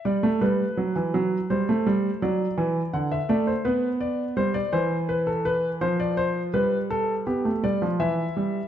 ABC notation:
X:1
M:3/4
L:1/16
Q:1/4=83
K:Gmix
V:1 name="Grand piano"
d2 B6 c4 | d4 ^f e d c B2 d2 | c d c2 B A B2 c d c2 | B2 A2 G2 d2 e4 |]
V:2 name="Grand piano" clef=bass
G, A, G,2 ^F, E, F,2 G, A, G,2 | ^F,2 E,2 D,2 A,2 B,4 | G,2 E,6 F,4 | G,4 B, A, G, F, E,2 G,2 |]